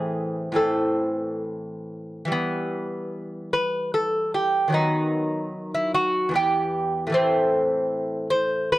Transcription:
0, 0, Header, 1, 2, 480
1, 0, Start_track
1, 0, Key_signature, 1, "minor"
1, 0, Tempo, 917431
1, 768, Tempo, 859599
1, 1248, Time_signature, 3, 2, 24, 8
1, 1248, Tempo, 804290
1, 3648, Tempo, 786370
1, 5136, End_track
2, 0, Start_track
2, 0, Title_t, "Lute"
2, 0, Program_c, 0, 24
2, 0, Note_on_c, 0, 45, 54
2, 0, Note_on_c, 0, 52, 47
2, 0, Note_on_c, 0, 60, 47
2, 0, Note_on_c, 0, 68, 86
2, 259, Note_off_c, 0, 45, 0
2, 264, Note_off_c, 0, 52, 0
2, 266, Note_off_c, 0, 68, 0
2, 269, Note_off_c, 0, 60, 0
2, 272, Note_on_c, 0, 45, 52
2, 280, Note_on_c, 0, 52, 41
2, 288, Note_on_c, 0, 60, 45
2, 293, Note_on_c, 0, 69, 58
2, 750, Note_off_c, 0, 69, 0
2, 1199, Note_off_c, 0, 52, 0
2, 1206, Note_on_c, 0, 52, 61
2, 1216, Note_off_c, 0, 45, 0
2, 1220, Note_on_c, 0, 55, 48
2, 1224, Note_off_c, 0, 60, 0
2, 1243, Note_on_c, 0, 59, 84
2, 1946, Note_off_c, 0, 59, 0
2, 1966, Note_on_c, 0, 71, 82
2, 2197, Note_off_c, 0, 71, 0
2, 2210, Note_on_c, 0, 69, 79
2, 2436, Note_off_c, 0, 69, 0
2, 2451, Note_on_c, 0, 67, 76
2, 2637, Note_off_c, 0, 52, 0
2, 2644, Note_off_c, 0, 55, 0
2, 2651, Note_on_c, 0, 51, 58
2, 2663, Note_on_c, 0, 54, 50
2, 2677, Note_off_c, 0, 67, 0
2, 2678, Note_on_c, 0, 59, 50
2, 2687, Note_on_c, 0, 63, 85
2, 3266, Note_off_c, 0, 63, 0
2, 3288, Note_on_c, 0, 64, 70
2, 3404, Note_off_c, 0, 64, 0
2, 3407, Note_on_c, 0, 66, 86
2, 3608, Note_off_c, 0, 51, 0
2, 3613, Note_on_c, 0, 40, 54
2, 3615, Note_off_c, 0, 54, 0
2, 3622, Note_off_c, 0, 59, 0
2, 3626, Note_on_c, 0, 52, 47
2, 3638, Note_off_c, 0, 66, 0
2, 3642, Note_on_c, 0, 59, 49
2, 3652, Note_on_c, 0, 67, 85
2, 4087, Note_on_c, 0, 45, 62
2, 4097, Note_off_c, 0, 52, 0
2, 4098, Note_off_c, 0, 40, 0
2, 4104, Note_on_c, 0, 52, 51
2, 4113, Note_off_c, 0, 59, 0
2, 4113, Note_off_c, 0, 67, 0
2, 4120, Note_on_c, 0, 57, 52
2, 4131, Note_on_c, 0, 60, 85
2, 4820, Note_off_c, 0, 60, 0
2, 4841, Note_on_c, 0, 72, 96
2, 5077, Note_off_c, 0, 72, 0
2, 5096, Note_on_c, 0, 71, 89
2, 5136, Note_off_c, 0, 45, 0
2, 5136, Note_off_c, 0, 52, 0
2, 5136, Note_off_c, 0, 57, 0
2, 5136, Note_off_c, 0, 71, 0
2, 5136, End_track
0, 0, End_of_file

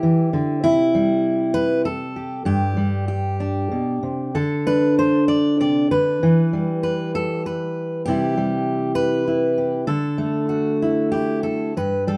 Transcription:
0, 0, Header, 1, 2, 480
1, 0, Start_track
1, 0, Tempo, 609137
1, 506, Time_signature, 3, 2, 24, 8
1, 2421, Tempo, 628272
1, 5301, Tempo, 606061
1, 7701, Tempo, 628272
1, 9458, End_track
2, 0, Start_track
2, 0, Title_t, "Steel-string acoustic guitar"
2, 0, Program_c, 0, 25
2, 0, Note_on_c, 0, 55, 61
2, 0, Note_on_c, 0, 64, 48
2, 0, Note_on_c, 0, 67, 67
2, 22, Note_on_c, 0, 52, 56
2, 258, Note_off_c, 0, 52, 0
2, 262, Note_on_c, 0, 50, 66
2, 475, Note_off_c, 0, 64, 0
2, 501, Note_on_c, 0, 64, 113
2, 505, Note_off_c, 0, 50, 0
2, 507, Note_on_c, 0, 48, 69
2, 508, Note_off_c, 0, 67, 0
2, 743, Note_off_c, 0, 55, 0
2, 746, Note_on_c, 0, 55, 68
2, 1213, Note_on_c, 0, 71, 112
2, 1455, Note_off_c, 0, 71, 0
2, 1458, Note_off_c, 0, 64, 0
2, 1459, Note_on_c, 0, 69, 95
2, 1703, Note_on_c, 0, 67, 42
2, 1907, Note_off_c, 0, 48, 0
2, 1910, Note_off_c, 0, 67, 0
2, 1933, Note_on_c, 0, 43, 81
2, 1935, Note_off_c, 0, 69, 0
2, 1938, Note_on_c, 0, 67, 84
2, 2172, Note_off_c, 0, 55, 0
2, 2181, Note_on_c, 0, 55, 61
2, 2418, Note_off_c, 0, 67, 0
2, 2427, Note_on_c, 0, 67, 68
2, 2672, Note_on_c, 0, 62, 49
2, 2904, Note_off_c, 0, 43, 0
2, 2912, Note_on_c, 0, 47, 53
2, 3148, Note_off_c, 0, 47, 0
2, 3151, Note_on_c, 0, 48, 53
2, 3367, Note_off_c, 0, 62, 0
2, 3393, Note_off_c, 0, 48, 0
2, 3394, Note_off_c, 0, 55, 0
2, 3395, Note_off_c, 0, 67, 0
2, 3395, Note_on_c, 0, 50, 78
2, 3396, Note_on_c, 0, 69, 92
2, 3639, Note_on_c, 0, 71, 106
2, 3642, Note_on_c, 0, 62, 58
2, 3877, Note_off_c, 0, 71, 0
2, 3883, Note_on_c, 0, 72, 94
2, 4105, Note_off_c, 0, 72, 0
2, 4108, Note_on_c, 0, 74, 104
2, 4115, Note_off_c, 0, 69, 0
2, 4347, Note_off_c, 0, 74, 0
2, 4352, Note_on_c, 0, 48, 55
2, 4357, Note_on_c, 0, 74, 86
2, 4581, Note_off_c, 0, 50, 0
2, 4588, Note_off_c, 0, 48, 0
2, 4588, Note_off_c, 0, 74, 0
2, 4589, Note_on_c, 0, 50, 61
2, 4591, Note_on_c, 0, 71, 97
2, 4801, Note_off_c, 0, 62, 0
2, 4827, Note_off_c, 0, 50, 0
2, 4832, Note_on_c, 0, 52, 79
2, 5064, Note_on_c, 0, 55, 61
2, 5285, Note_off_c, 0, 71, 0
2, 5294, Note_on_c, 0, 71, 85
2, 5541, Note_off_c, 0, 71, 0
2, 5545, Note_on_c, 0, 69, 102
2, 5787, Note_off_c, 0, 69, 0
2, 5791, Note_on_c, 0, 71, 80
2, 6259, Note_off_c, 0, 71, 0
2, 6262, Note_on_c, 0, 67, 97
2, 6267, Note_off_c, 0, 55, 0
2, 6278, Note_on_c, 0, 48, 80
2, 6284, Note_on_c, 0, 55, 55
2, 6287, Note_on_c, 0, 64, 56
2, 6505, Note_off_c, 0, 55, 0
2, 6514, Note_on_c, 0, 55, 68
2, 6968, Note_off_c, 0, 67, 0
2, 6972, Note_on_c, 0, 71, 110
2, 7218, Note_off_c, 0, 64, 0
2, 7227, Note_on_c, 0, 64, 46
2, 7467, Note_on_c, 0, 67, 44
2, 7587, Note_off_c, 0, 52, 0
2, 7675, Note_off_c, 0, 64, 0
2, 7676, Note_off_c, 0, 67, 0
2, 7678, Note_off_c, 0, 48, 0
2, 7696, Note_off_c, 0, 71, 0
2, 7701, Note_on_c, 0, 69, 90
2, 7705, Note_off_c, 0, 55, 0
2, 7705, Note_on_c, 0, 50, 80
2, 7937, Note_on_c, 0, 57, 66
2, 8172, Note_on_c, 0, 66, 68
2, 8428, Note_on_c, 0, 64, 49
2, 8648, Note_off_c, 0, 69, 0
2, 8651, Note_on_c, 0, 67, 76
2, 8656, Note_off_c, 0, 64, 0
2, 8665, Note_on_c, 0, 64, 43
2, 8889, Note_off_c, 0, 67, 0
2, 8892, Note_on_c, 0, 69, 82
2, 9111, Note_off_c, 0, 57, 0
2, 9116, Note_off_c, 0, 64, 0
2, 9137, Note_off_c, 0, 69, 0
2, 9139, Note_off_c, 0, 66, 0
2, 9142, Note_off_c, 0, 50, 0
2, 9148, Note_on_c, 0, 43, 67
2, 9152, Note_on_c, 0, 71, 93
2, 9383, Note_on_c, 0, 55, 57
2, 9384, Note_off_c, 0, 71, 0
2, 9387, Note_on_c, 0, 69, 82
2, 9458, Note_off_c, 0, 43, 0
2, 9458, Note_off_c, 0, 55, 0
2, 9458, Note_off_c, 0, 69, 0
2, 9458, End_track
0, 0, End_of_file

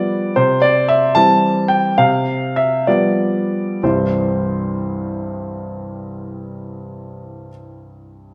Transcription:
0, 0, Header, 1, 2, 480
1, 0, Start_track
1, 0, Key_signature, 0, "major"
1, 0, Tempo, 528169
1, 330, Time_signature, 6, 3, 24, 8
1, 1295, Tempo, 569801
1, 2255, Tempo, 637620
1, 6604, End_track
2, 0, Start_track
2, 0, Title_t, "Grand piano"
2, 0, Program_c, 0, 0
2, 0, Note_on_c, 0, 53, 35
2, 0, Note_on_c, 0, 55, 35
2, 0, Note_on_c, 0, 59, 38
2, 0, Note_on_c, 0, 74, 64
2, 298, Note_off_c, 0, 53, 0
2, 300, Note_off_c, 0, 59, 0
2, 301, Note_off_c, 0, 55, 0
2, 327, Note_on_c, 0, 72, 63
2, 329, Note_off_c, 0, 74, 0
2, 332, Note_on_c, 0, 48, 51
2, 525, Control_c, 0, 64, 127
2, 560, Note_on_c, 0, 74, 69
2, 567, Note_off_c, 0, 72, 0
2, 804, Note_off_c, 0, 74, 0
2, 804, Note_on_c, 0, 76, 67
2, 1029, Note_off_c, 0, 48, 0
2, 1043, Note_on_c, 0, 81, 83
2, 1048, Note_off_c, 0, 76, 0
2, 1051, Note_on_c, 0, 52, 37
2, 1053, Note_on_c, 0, 55, 37
2, 1058, Note_on_c, 0, 60, 40
2, 1062, Control_c, 0, 64, 0
2, 1513, Note_on_c, 0, 79, 61
2, 1521, Note_off_c, 0, 81, 0
2, 1728, Note_off_c, 0, 52, 0
2, 1729, Note_off_c, 0, 55, 0
2, 1731, Note_off_c, 0, 60, 0
2, 1755, Note_off_c, 0, 79, 0
2, 1761, Note_on_c, 0, 77, 70
2, 1763, Note_on_c, 0, 48, 51
2, 1972, Control_c, 0, 64, 127
2, 2254, Note_off_c, 0, 77, 0
2, 2254, Note_on_c, 0, 76, 60
2, 2464, Note_off_c, 0, 48, 0
2, 2483, Note_off_c, 0, 76, 0
2, 2487, Note_on_c, 0, 74, 52
2, 2490, Control_c, 0, 64, 0
2, 2493, Note_on_c, 0, 53, 31
2, 2494, Note_on_c, 0, 55, 32
2, 2498, Note_on_c, 0, 59, 34
2, 3191, Note_off_c, 0, 53, 0
2, 3192, Note_off_c, 0, 55, 0
2, 3194, Note_off_c, 0, 59, 0
2, 3207, Note_on_c, 0, 36, 36
2, 3211, Note_on_c, 0, 43, 31
2, 3212, Note_on_c, 0, 52, 32
2, 3214, Note_on_c, 0, 72, 39
2, 3216, Note_on_c, 0, 60, 30
2, 3218, Note_off_c, 0, 74, 0
2, 3218, Note_on_c, 0, 55, 30
2, 3221, Note_on_c, 0, 64, 31
2, 3364, Control_c, 0, 64, 127
2, 5957, Note_off_c, 0, 36, 0
2, 5961, Note_off_c, 0, 43, 0
2, 5961, Note_off_c, 0, 52, 0
2, 5964, Note_off_c, 0, 72, 0
2, 5966, Note_off_c, 0, 60, 0
2, 5968, Note_off_c, 0, 55, 0
2, 5970, Note_off_c, 0, 64, 0
2, 6604, End_track
0, 0, End_of_file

